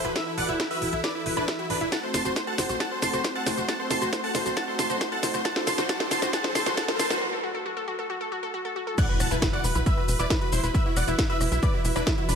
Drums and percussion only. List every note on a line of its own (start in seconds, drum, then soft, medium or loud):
0.05 closed hi-hat medium
0.16 kick loud
0.16 snare medium
0.16 closed hi-hat medium
0.38 open hi-hat loud
0.49 closed hi-hat soft
0.60 kick loud
0.60 snare medium
0.60 closed hi-hat medium
0.71 open hi-hat medium
0.82 open hi-hat loud
0.93 closed hi-hat medium
1.04 kick loud
1.04 snare medium
1.04 closed hi-hat medium
1.26 open hi-hat loud
1.37 closed hi-hat medium
1.48 kick loud
1.48 snare medium
1.48 closed hi-hat medium
1.59 closed hi-hat soft
1.70 open hi-hat loud
1.81 closed hi-hat soft
1.92 kick loud
1.92 snare medium
1.92 closed hi-hat medium
1.92 shaker soft
2.14 snare medium
2.14 open hi-hat loud
2.14 shaker medium
2.25 closed hi-hat soft
2.25 shaker soft
2.36 kick loud
2.36 snare medium
2.36 closed hi-hat medium
2.36 shaker soft
2.47 closed hi-hat soft
2.58 snare medium
2.58 open hi-hat loud
2.58 shaker medium
2.69 closed hi-hat medium
2.69 shaker soft
2.80 kick loud
2.80 snare medium
2.80 closed hi-hat medium
2.80 shaker soft
3.02 snare medium
3.02 open hi-hat loud
3.02 shaker medium
3.13 closed hi-hat medium
3.13 shaker soft
3.24 kick loud
3.24 snare medium
3.24 closed hi-hat medium
3.24 shaker soft
3.35 closed hi-hat soft
3.46 snare medium
3.46 open hi-hat loud
3.46 shaker medium
3.58 closed hi-hat medium
3.58 shaker soft
3.69 kick loud
3.69 snare medium
3.69 closed hi-hat medium
3.69 shaker soft
3.91 snare medium
3.91 open hi-hat loud
3.91 shaker medium
4.02 closed hi-hat soft
4.02 shaker soft
4.13 kick loud
4.13 snare medium
4.13 closed hi-hat medium
4.13 shaker soft
4.24 open hi-hat medium
4.35 snare medium
4.35 open hi-hat loud
4.35 shaker medium
4.46 closed hi-hat medium
4.46 shaker soft
4.57 kick loud
4.57 snare medium
4.57 closed hi-hat medium
4.57 shaker soft
4.79 snare medium
4.79 open hi-hat loud
4.79 shaker medium
4.90 closed hi-hat medium
4.90 shaker soft
5.01 kick loud
5.01 snare medium
5.01 closed hi-hat medium
5.01 shaker soft
5.12 closed hi-hat soft
5.23 snare medium
5.23 open hi-hat loud
5.23 shaker medium
5.34 closed hi-hat medium
5.34 shaker soft
5.45 kick loud
5.45 snare medium
5.45 closed hi-hat medium
5.45 shaker soft
5.56 snare medium
5.67 snare medium
5.67 open hi-hat loud
5.67 shaker medium
5.78 snare medium
5.78 closed hi-hat medium
5.78 shaker soft
5.89 kick loud
5.89 snare loud
5.89 closed hi-hat medium
5.89 shaker soft
6.00 snare medium
6.00 closed hi-hat soft
6.11 snare loud
6.11 open hi-hat loud
6.11 shaker medium
6.22 snare medium
6.22 closed hi-hat medium
6.22 shaker soft
6.33 kick loud
6.33 snare loud
6.33 closed hi-hat medium
6.33 shaker soft
6.44 snare medium
6.55 snare loud
6.55 open hi-hat loud
6.55 shaker medium
6.66 snare medium
6.66 closed hi-hat medium
6.66 shaker soft
6.77 kick loud
6.77 snare loud
6.77 closed hi-hat medium
6.77 shaker soft
6.88 snare medium
6.88 closed hi-hat soft
6.99 snare loud
6.99 open hi-hat loud
6.99 shaker medium
7.10 snare medium
7.10 closed hi-hat medium
7.10 shaker soft
8.98 kick loud
8.98 closed hi-hat medium
8.98 crash loud
8.98 shaker soft
9.20 cross-stick medium
9.20 open hi-hat loud
9.20 shaker medium
9.31 closed hi-hat medium
9.31 shaker soft
9.42 kick loud
9.42 snare loud
9.42 closed hi-hat medium
9.42 shaker soft
9.53 closed hi-hat soft
9.64 open hi-hat loud
9.64 shaker medium
9.75 closed hi-hat medium
9.75 shaker soft
9.86 kick loud
9.86 closed hi-hat medium
9.86 shaker soft
10.08 open hi-hat loud
10.08 shaker medium
10.19 closed hi-hat medium
10.19 shaker soft
10.30 kick loud
10.30 snare loud
10.30 closed hi-hat medium
10.30 shaker soft
10.41 closed hi-hat soft
10.52 open hi-hat loud
10.52 shaker medium
10.64 closed hi-hat medium
10.64 shaker soft
10.75 kick loud
10.75 closed hi-hat medium
10.75 shaker soft
10.97 cross-stick medium
10.97 open hi-hat loud
10.97 shaker medium
11.08 closed hi-hat medium
11.08 shaker soft
11.19 kick loud
11.19 snare loud
11.19 closed hi-hat medium
11.19 shaker soft
11.30 closed hi-hat soft
11.41 cross-stick medium
11.41 open hi-hat loud
11.41 shaker medium
11.52 closed hi-hat medium
11.52 shaker soft
11.63 kick loud
11.63 closed hi-hat medium
11.63 shaker soft
11.85 open hi-hat loud
11.85 shaker medium
11.96 cross-stick medium
11.96 closed hi-hat medium
11.96 shaker soft
12.07 kick loud
12.07 snare loud
12.07 closed hi-hat medium
12.07 shaker soft
12.18 closed hi-hat soft
12.29 open hi-hat loud
12.29 shaker medium